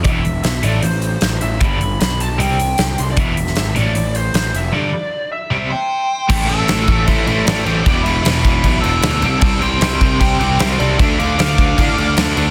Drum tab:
CC |----------------|----------------|----------------|----------------|
HH |x-x-x-x-x-x-x-x-|x-x-x-x-x-x-x-x-|x-x-x-x-x-x-x-x-|----------------|
SD |----o-------o---|----o-------o---|---oo-------o---|----------------|
BD |o---------------|o---------------|o---------------|----------------|

CC |x-x-x-x-x-x-x-x-|x-x-x-x-x-x-x-x-|x-x-x-x-x-x-x-x-|x-x-x-x-x-x-x-x-|
HH |----------------|----------------|----------------|----------------|
SD |----o-------o---|----o-------o---|----o-------o---|----o-------o---|
BD |o-----o-o-------|o-----o-o-------|o-----o-o-------|o-----o-o-------|